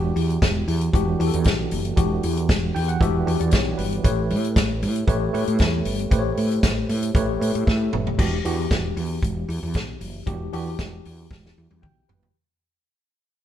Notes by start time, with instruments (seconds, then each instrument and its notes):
Already playing: fretless electric bass E1, tine electric piano E3 D4 F#4 G4
0.16 fretless electric bass E2, open hi-hat
0.30 closed hi-hat
0.42 fretless electric bass E1, kick, snare, closed hi-hat
0.68 fretless electric bass E2, open hi-hat
0.81 closed hi-hat
0.93 fretless electric bass E1, tine electric piano E3 D4 F#4 G4, kick, closed hi-hat
1.19 fretless electric bass E2, tine electric piano E3 D4 F#4 G4, open hi-hat
1.27 tine electric piano A4
1.33 fretless electric bass E2, closed hi-hat
1.44 fretless electric bass B1, kick, snare, closed hi-hat
1.71 fretless electric bass F#1, open hi-hat
1.85 closed hi-hat
1.96 fretless electric bass E1, tine electric piano E3 D4 F#4 G4, kick, closed hi-hat
2.23 fretless electric bass E2, open hi-hat
2.37 closed hi-hat
2.49 fretless electric bass E1, kick, snare, closed hi-hat
2.75 fretless electric bass E2, tine electric piano G5, open hi-hat
2.88 tine electric piano F#5, closed hi-hat
3.00 fretless electric bass E1, tine electric piano E3 D4 F#4 G4 E5, kick, closed hi-hat
3.26 fretless electric bass E2, tine electric piano E3 D4 F#4 G4, open hi-hat
3.40 fretless electric bass E2, tine electric piano D5, closed hi-hat
3.51 fretless electric bass B1, tine electric piano C#5, kick, snare, closed hi-hat
3.78 fretless electric bass G1, tine electric piano B4, open hi-hat
3.92 closed hi-hat
4.04 fretless electric bass A1, tine electric piano A3 G4 B4 C#5, kick, closed hi-hat
4.30 fretless electric bass A2, open hi-hat
4.44 closed hi-hat
4.56 fretless electric bass A1, kick, snare, closed hi-hat
4.82 fretless electric bass A2, open hi-hat
4.96 closed hi-hat
5.07 fretless electric bass A1, tine electric piano A3 G4 B4 C#5, kick, closed hi-hat
5.33 fretless electric bass A2, tine electric piano A3 G4 B4 C#5, open hi-hat
5.47 fretless electric bass A2, closed hi-hat
5.58 fretless electric bass E2, kick, snare, closed hi-hat
5.85 fretless electric bass G1, open hi-hat
5.99 closed hi-hat
6.11 fretless electric bass A1, tine electric piano A3 G4 B4 C5, kick, closed hi-hat
6.19 tine electric piano C#5
6.37 fretless electric bass A2, open hi-hat
6.51 closed hi-hat
6.63 fretless electric bass A1, kick, snare, closed hi-hat
6.89 fretless electric bass A2, open hi-hat
7.03 closed hi-hat
7.15 fretless electric bass A1, tine electric piano A3 G4 B4 C#5, kick, closed hi-hat
7.40 fretless electric bass A2, tine electric piano A3 G4 B4 C#5, open hi-hat
7.55 fretless electric bass A2, closed hi-hat
7.67 fretless electric bass A2, tine electric piano E5, kick, snare
7.93 fretless electric bass F#1, mid tom
8.07 floor tom
8.18 fretless electric bass E1, tine electric piano E3 D4 F#4 G4, kick, crash
8.44 fretless electric bass E2, tine electric piano E3 D4 F#4 G4, open hi-hat
8.71 fretless electric bass E1, kick, snare, closed hi-hat
8.97 fretless electric bass E2, open hi-hat
9.22 fretless electric bass E1, kick, closed hi-hat
9.49 fretless electric bass E2, open hi-hat
9.63 fretless electric bass E2
9.74 fretless electric bass B1, kick, snare, closed hi-hat
10.01 fretless electric bass F#1, open hi-hat
10.26 fretless electric bass E1, tine electric piano E3 D4 F#4 G4, kick, closed hi-hat
10.52 fretless electric bass E2, tine electric piano E3 D4 F#4 G4, open hi-hat
10.79 fretless electric bass E1, kick, snare, closed hi-hat
11.05 fretless electric bass E2, open hi-hat
11.31 fretless electric bass E1, kick, snare
11.46 snare
11.58 fretless electric bass E2
11.71 fretless electric bass E2, high tom
11.82 fretless electric bass B1, tine electric piano G5, kick, mid tom
12.09 fretless electric bass F#1, tine electric piano B4, floor tom
12.23 floor tom